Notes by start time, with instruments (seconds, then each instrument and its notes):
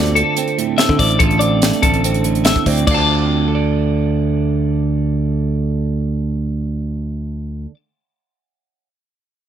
Already playing: picked electric bass D2, clean electric guitar D2 A3 C4 F4 D5
0.06 closed hi-hat
0.16 clean electric guitar D3 A4, closed hi-hat
0.37 clean electric guitar C4, closed hi-hat
0.48 closed hi-hat
0.58 clean electric guitar A2, closed hi-hat
0.78 clean electric guitar A3 E5, snare, closed hi-hat
0.89 picked electric bass D3, kick
0.99 picked electric bass A1, clean electric guitar C4 D5, kick, open hi-hat
1.11 closed hi-hat
1.19 picked electric bass A1, clean electric guitar D2 F4 A4, kick, closed hi-hat
1.31 closed hi-hat
1.39 clean electric guitar C4 D5, closed hi-hat
1.62 clean electric guitar A3, snare, closed hi-hat
1.73 closed hi-hat
1.82 picked electric bass A1, clean electric guitar D3 A4, kick, closed hi-hat
1.94 closed hi-hat
2.04 clean electric guitar C4, closed hi-hat
2.14 closed hi-hat
2.24 clean electric guitar A2, closed hi-hat
2.35 closed hi-hat
2.45 clean electric guitar A3 E5, snare, closed hi-hat
2.56 kick
2.66 picked electric bass D2, clean electric guitar C4 D5, kick, open hi-hat
2.78 closed hi-hat
2.87 picked electric bass D2, clean electric guitar D2 D3 D5, kick, crash
2.91 clean electric guitar A3 C4 F5 A5
2.95 clean electric guitar F4 D6
3.48 clean electric guitar A4
3.55 clean electric guitar D5